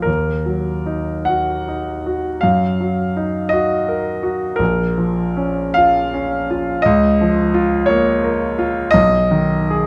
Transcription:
0.02 2.38 D#2 soft
0.02 1.27 A#4 medium
0.45 1.12 F#3 soft
0.86 1.51 D#4 soft
1.25 1.90 F#4 soft
1.25 2.41 F#5 medium
1.68 2.28 D#4 soft
2.06 2.43 F#4 soft
2.41 4.56 F#2 medium
2.41 3.53 F5 medium
2.80 3.39 F#3 soft
3.16 3.75 D#4 soft
3.49 4.09 F#4 soft
3.49 4.58 D#5 medium
3.89 4.45 A#4 soft
4.23 4.59 F#4 soft
4.56 6.82 A#1 medium
4.56 5.75 A#4 medium
4.98 5.62 F3 soft
5.37 6.00 C#4 soft
5.74 6.36 F4 soft
5.74 6.84 F5 medium
6.14 6.71 C#4 soft
6.50 6.86 F4 medium
6.82 8.91 C#2 medium
6.82 7.88 D#5 medium
7.21 7.76 F3 medium
7.54 8.10 F4 medium
7.86 8.45 A#3 medium
7.86 8.93 C#5 medium
8.24 8.80 A#4 medium
8.59 8.94 F4 medium
8.91 9.87 B1 medium
8.91 9.87 D#5 loud
9.31 9.87 D#3 medium
9.71 9.87 G#4 medium

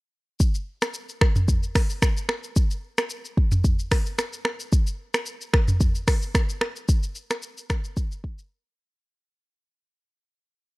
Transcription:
0.40 kick loud
0.40 shaker medium
0.55 shaker medium
0.82 finger snap medium
0.82 cross-stick loud
0.82 shaker medium
0.94 shaker medium
1.09 shaker medium
1.21 finger snap medium
1.21 kick loud
1.21 cross-stick loud
1.36 mid tom medium
1.36 shaker medium
1.48 kick loud
1.48 shaker medium
1.63 shaker soft
1.75 finger snap medium
1.75 kick medium
1.75 cross-stick medium
1.75 open hi-hat soft
1.75 shaker medium
1.90 shaker soft
2.02 finger snap medium
2.02 kick medium
2.02 cross-stick medium
2.02 shaker medium
2.17 shaker medium
2.29 finger snap medium
2.29 cross-stick medium
2.44 shaker medium
2.56 kick loud
2.56 shaker medium
2.71 shaker medium
2.98 finger snap medium
2.98 cross-stick loud
2.98 shaker medium
3.10 shaker medium
3.25 shaker medium
3.37 kick loud
3.52 mid tom medium
3.52 shaker medium
3.64 kick loud
3.64 shaker medium
3.79 shaker soft
3.91 finger snap medium
3.91 kick medium
3.91 cross-stick medium
3.91 open hi-hat medium
3.91 shaker medium
4.06 shaker medium
4.19 finger snap medium
4.19 cross-stick medium
4.19 shaker medium
4.33 shaker medium
4.45 finger snap medium
4.45 cross-stick medium
4.60 shaker medium
4.72 kick loud
4.72 shaker medium
4.87 shaker medium
5.14 finger snap medium
5.14 cross-stick medium
5.14 shaker medium
5.26 shaker medium
5.41 shaker medium
5.53 finger snap medium
5.53 kick loud
5.53 cross-stick loud
5.68 mid tom medium
5.68 shaker medium
5.80 kick loud
5.80 shaker medium
5.95 shaker soft
6.08 finger snap medium
6.08 kick medium
6.08 cross-stick medium
6.08 open hi-hat medium
6.08 shaker medium
6.22 shaker medium
6.35 finger snap medium
6.35 kick medium
6.35 cross-stick medium
6.35 shaker medium
6.49 shaker medium
6.61 finger snap medium
6.61 cross-stick loud
6.76 shaker medium
6.89 kick loud
6.89 shaker medium
7.03 shaker medium
7.15 shaker medium
7.31 finger snap medium
7.31 cross-stick loud
7.31 shaker medium
7.42 shaker medium
7.58 shaker medium
7.70 finger snap medium
7.70 kick loud
7.70 cross-stick loud
7.70 shaker medium
7.84 shaker medium
7.97 kick loud
7.97 shaker medium
8.12 shaker soft
8.24 kick medium
8.39 shaker medium

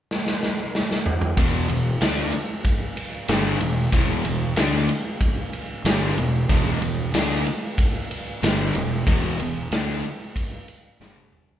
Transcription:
0.11 snare medium
0.27 snare medium
0.43 snare medium
0.75 snare medium
0.91 snare medium
1.06 mid tom medium
1.21 mid tom medium
1.37 1.67 E1 medium
1.37 1.68 E2 medium
1.37 1.68 B2 medium
1.37 1.69 E3 medium
1.37 kick loud
1.37 ride loud
1.69 1.99 E1 medium
1.69 1.95 E2 medium
1.69 1.95 B2 medium
1.69 ride medium
2.01 2.31 D2 medium
2.01 2.32 D3 medium
2.01 2.32 A3 medium
2.01 2.33 D4 medium
2.01 snare loud
2.01 ride medium
2.32 ride medium
2.65 kick loud
2.65 ride loud
2.97 ride medium
3.28 3.58 G1 medium
3.28 3.60 G2 medium
3.28 3.60 D3 medium
3.28 3.60 G3 loud
3.28 snare loud
3.28 ride loud
3.61 3.90 E1 medium
3.61 3.87 E2 medium
3.61 3.87 B2 medium
3.61 ride medium
3.93 4.23 E1 medium
3.93 4.24 E2 medium
3.93 4.24 B2 loud
3.93 4.24 E3 medium
3.93 kick loud
3.93 ride loud
4.25 4.54 E1 medium
4.25 4.51 E2 medium
4.25 4.51 B2 medium
4.25 ride medium
4.56 4.87 D2 medium
4.56 4.88 D3 medium
4.56 4.88 A3 medium
4.56 4.88 D4 medium
4.56 snare loud
4.56 ride medium
4.89 ride medium
5.21 kick loud
5.21 ride medium
5.53 ride medium
5.84 6.15 G1 loud
5.84 6.16 G2 medium
5.84 6.17 D3 loud
5.84 6.17 G3 loud
5.84 snare loud
5.84 ride medium
6.17 6.47 E1 medium
6.17 6.43 E2 medium
6.17 6.44 B2 medium
6.17 ride medium
6.49 6.79 E1 medium
6.49 6.81 E2 loud
6.49 6.81 B2 loud
6.49 6.81 E3 loud
6.49 kick loud
6.49 ride medium
6.82 7.12 E1 medium
6.82 7.08 E2 medium
6.82 7.08 B2 medium
6.82 ride medium
7.14 7.44 D2 medium
7.14 7.45 D3 medium
7.14 7.45 A3 medium
7.14 7.46 D4 loud
7.14 snare loud
7.14 ride loud
7.46 ride medium
7.78 kick loud
7.78 ride medium
8.11 ride medium
8.42 8.73 G1 medium
8.42 8.74 G2 medium
8.42 8.74 D3 medium
8.42 8.75 G3 medium
8.42 snare loud
8.42 ride loud
8.75 9.05 E1 medium
8.75 9.01 E2 medium
8.75 9.01 B2 medium
8.75 ride medium
9.07 9.37 E1 medium
9.07 9.39 E2 medium
9.07 9.39 B2 medium
9.07 9.39 E3 loud
9.07 kick loud
9.07 ride loud
9.39 9.69 E1 medium
9.39 9.66 E2 medium
9.39 9.66 B2 medium
9.39 ride medium
9.71 10.01 D2 medium
9.71 10.03 D3 medium
9.71 10.04 A3 medium
9.71 10.04 D4 loud
9.71 snare loud
9.71 ride loud
10.04 ride medium
10.36 kick loud
10.36 ride medium
10.68 ride medium
11.00 11.60 G1 medium
11.00 11.60 G2 medium
11.00 11.60 D3 medium
11.00 11.60 G3 loud
11.00 snare medium
11.16 high tom medium
11.33 mid tom medium
11.49 floor tom medium

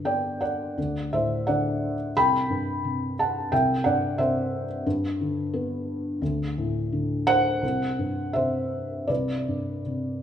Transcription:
0.00 0.73 G2 soft
0.00 0.74 D3 soft
0.05 0.75 B3 soft
0.05 0.40 D5 soft
0.05 0.43 G5 medium
0.41 1.09 D5 soft
0.41 1.14 F#5 medium
0.78 2.11 D2 medium
1.13 2.12 A2 soft
1.13 1.45 C5 medium
1.13 1.45 E5 medium
1.47 2.14 D3 medium
1.47 1.95 D5 medium
1.47 1.94 F#5 medium
2.16 3.48 C2 medium
2.16 3.15 G5 medium
2.16 3.15 B5 loud
2.50 3.49 G2 soft
2.84 3.50 C3 soft
3.19 3.50 F#5 medium
3.19 3.50 A5 medium
3.52 4.82 C2 medium
3.52 3.83 E5 medium
3.52 3.83 G5 medium
3.84 4.83 G2 medium
3.84 4.16 D5 medium
3.84 4.19 F#5 medium
4.18 4.84 C3 medium
4.18 4.66 C5 medium
4.18 4.65 E5 medium
4.86 6.18 G2 medium
5.21 6.19 D3 medium
5.54 6.20 B3 medium
6.22 7.59 D2 medium
6.58 7.60 A2 medium
6.92 7.61 D3 soft
7.27 8.32 C5 medium
7.27 8.31 F#5 loud
7.62 9.05 C2 medium
7.99 9.06 G2 soft
8.33 9.07 C3 soft
8.33 9.06 C5 medium
8.33 9.11 E5 medium
9.07 10.22 C2 soft
9.07 9.82 B4 soft
9.07 9.81 D5 medium
9.48 10.22 G2 soft
9.86 10.22 C3 soft

